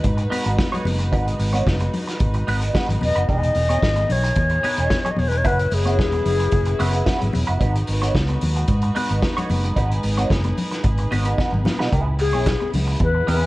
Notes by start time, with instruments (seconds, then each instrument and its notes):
Already playing: string section G#3 D#4 F#4 B4
0.04 fingered electric bass G#2, muted clean electric guitar stroke, kick, closed hi-hat, muted conga
0.18 muted clean electric guitar stroke, closed hi-hat
0.30 clean electric guitar D#4 F#4 B4, open hi-hat, muted conga, high conga
0.45 fingered electric bass G#1, clean electric guitar D#4 F#4 B4, closed hi-hat
0.58 muted clean electric guitar stroke, kick, snare, muted conga, high conga
0.72 clean electric guitar D#4 F#4 C#5, closed hi-hat, low conga
0.85 fingered electric bass F#1, muted clean electric guitar stroke, open hi-hat, muted conga, high conga, low conga
0.99 muted clean electric guitar stroke, closed hi-hat
1.12 fingered electric bass G#1, clean electric guitar D#4 F#4 B4, kick, closed hi-hat, muted conga
1.26 muted clean electric guitar stroke, closed hi-hat
1.39 fingered electric bass G#1, muted clean electric guitar stroke, open hi-hat, muted conga
1.53 clean electric guitar D#4 F#4 C#5, closed hi-hat, high conga
1.66 fingered electric bass F#1, muted clean electric guitar stroke, kick, snare, high conga
1.80 muted clean electric guitar stroke, closed hi-hat, high conga
1.94 open hi-hat, low conga
2.07 muted clean electric guitar stroke, snare, closed hi-hat
2.20 fingered electric bass G#1, kick, closed hi-hat, muted conga
2.34 muted clean electric guitar stroke, closed hi-hat
2.47 fingered electric bass G#1, clean electric guitar D#4 F#4 B4, open hi-hat, high conga
2.62 muted clean electric guitar stroke, closed hi-hat
2.74 clean electric guitar D#4 F#4 B4, kick, snare, high conga
2.89 fingered electric bass G#1, muted clean electric guitar stroke, closed hi-hat, low conga
3.01 fingered electric bass E1, alto flute D#5, muted clean electric guitar stroke, open hi-hat, high conga, low conga
3.16 fingered electric bass F#1, clean electric guitar D#4 F#4 B4, closed hi-hat
3.28 fingered electric bass E1, string section E3 B3 G#4, clean electric guitar D#4 G#4 B4, alto flute D#5, kick, closed hi-hat, muted conga
3.42 muted clean electric guitar stroke, closed hi-hat
3.55 fingered electric bass E1, muted clean electric guitar stroke, open hi-hat, muted conga
3.69 clean electric guitar D#4 G#4 C#5, closed hi-hat, high conga
3.82 fingered electric bass G#1, muted clean electric guitar stroke, kick, snare, high conga
3.96 muted clean electric guitar stroke, closed hi-hat, high conga
4.09 fingered electric bass B1, alto flute C#5, open hi-hat, muted conga, low conga
4.24 muted clean electric guitar stroke, closed hi-hat
4.35 fingered electric bass E2, muted clean electric guitar stroke, kick, closed hi-hat, muted conga
4.49 muted clean electric guitar stroke, closed hi-hat
4.63 clean electric guitar D#4 G#4 B4, open hi-hat, high conga
4.77 fingered electric bass E1, clean electric guitar D#4 G#4 B4, closed hi-hat
4.90 muted clean electric guitar stroke, kick, snare, high conga
5.05 clean electric guitar D#4 G#4 C#5, closed hi-hat, low conga
5.11 alto flute D#5
5.17 fingered electric bass E1, alto flute C#5, muted clean electric guitar stroke, open hi-hat, high conga, low conga
5.28 alto flute B4
5.32 muted clean electric guitar stroke, closed hi-hat
5.37 alto flute C#5
5.44 fingered electric bass F#1, string section F#3 C#4 E4 B4, clean electric guitar E4 F#4 B4, alto flute B4, kick, closed hi-hat, muted conga
5.59 muted clean electric guitar stroke, closed hi-hat
5.71 fingered electric bass F#1, alto flute G#4, muted clean electric guitar stroke, open hi-hat, muted conga
5.85 clean electric guitar E4 F#4 C#5, closed hi-hat, high conga
5.99 fingered electric bass E1, muted clean electric guitar stroke, kick, snare, high conga
6.12 muted clean electric guitar stroke, closed hi-hat, high conga
6.25 fingered electric bass F#1, open hi-hat, muted conga, low conga
6.40 muted clean electric guitar stroke, closed hi-hat
6.52 fingered electric bass F#1, muted clean electric guitar stroke, kick, closed hi-hat
6.65 muted clean electric guitar stroke, closed hi-hat
6.79 fingered electric bass F#1, clean electric guitar E4 F#4 B4, open hi-hat, muted conga, high conga
6.93 clean electric guitar E4 F#4 B4, closed hi-hat
7.06 clean electric guitar E4 F#4 B4, kick, snare, muted conga, high conga
7.20 fingered electric bass G#1, muted clean electric guitar stroke, closed hi-hat, low conga
7.33 fingered electric bass E1, muted clean electric guitar stroke, open hi-hat, muted conga, high conga, low conga
7.47 fingered electric bass F#1, clean electric guitar E4 F#4 B4, closed hi-hat
7.60 fingered electric bass G#1, string section G#3 D#4 F#4 B4, clean electric guitar D#4 F#4 B4, kick, closed hi-hat, muted conga
7.74 muted clean electric guitar stroke, closed hi-hat
7.87 fingered electric bass G#1, muted clean electric guitar stroke, open hi-hat
8.02 clean electric guitar D#4 F#4 C#5, closed hi-hat, high conga
8.14 fingered electric bass C#2, muted clean electric guitar stroke, kick, snare, high conga
8.28 muted clean electric guitar stroke, closed hi-hat, high conga
8.41 fingered electric bass D#2, open hi-hat, muted conga, low conga
8.56 muted clean electric guitar stroke, closed hi-hat
8.68 fingered electric bass G#2, muted clean electric guitar stroke, kick, closed hi-hat, muted conga
8.82 muted clean electric guitar stroke, closed hi-hat
8.95 clean electric guitar D#4 F#4 B4, open hi-hat, muted conga, high conga
9.09 fingered electric bass G#1, clean electric guitar D#4 F#4 B4, closed hi-hat
9.22 muted clean electric guitar stroke, kick, snare, muted conga, high conga
9.37 clean electric guitar D#4 F#4 C#5, closed hi-hat, low conga
9.49 fingered electric bass F#1, muted clean electric guitar stroke, open hi-hat, high conga, low conga
9.64 muted clean electric guitar stroke, closed hi-hat
9.76 fingered electric bass G#1, clean electric guitar D#4 F#4 B4, string section G#4, kick, closed hi-hat, muted conga
9.91 muted clean electric guitar stroke, closed hi-hat
10.03 fingered electric bass G#1, muted clean electric guitar stroke, open hi-hat, muted conga
10.17 clean electric guitar D#4 F#4 C#5, closed hi-hat, high conga
10.30 fingered electric bass F#1, muted clean electric guitar stroke, kick, snare, high conga
10.44 muted clean electric guitar stroke, closed hi-hat, high conga
10.58 open hi-hat, low conga
10.72 muted clean electric guitar stroke, snare, closed hi-hat
10.84 fingered electric bass G#1, muted clean electric guitar stroke, kick, closed hi-hat, muted conga
10.98 muted clean electric guitar stroke, closed hi-hat
11.11 fingered electric bass G#1, clean electric guitar D#4 F#4 B4, open hi-hat, muted conga, high conga
11.25 clean electric guitar D#4 F#4 B4, closed hi-hat
11.38 clean electric guitar D#4 F#4 B4, kick, snare, muted conga, high conga
11.52 fingered electric bass G#1, muted clean electric guitar stroke, low conga
11.65 fingered electric bass A#1, muted clean electric guitar stroke, snare, muted conga, high conga, low conga
11.79 fingered electric bass B1, clean electric guitar D#4 F#4 B4, snare
11.92 fingered electric bass C#2, string section C#3 G#3 B3 E4, clean electric guitar E4 G#4 B4, kick, closed hi-hat, muted conga
12.06 muted clean electric guitar stroke
12.19 alto flute G#4, muted clean electric guitar stroke, clap, open hi-hat
12.33 fingered electric bass B1, clean electric guitar E4 G#4 C#5, high conga
12.46 muted clean electric guitar stroke, kick, snare, clap, closed hi-hat
12.60 muted clean electric guitar stroke, high conga
12.73 fingered electric bass C#2, open hi-hat, low conga
12.87 muted clean electric guitar stroke
13.00 fingered electric bass E2, alto flute B4, muted clean electric guitar stroke, kick, closed hi-hat, muted conga
13.15 muted clean electric guitar stroke
13.27 fingered electric bass E2, clean electric guitar E4 G#4 B4, alto flute B4, open hi-hat, muted conga, high conga
13.41 clean electric guitar E4 G#4 B4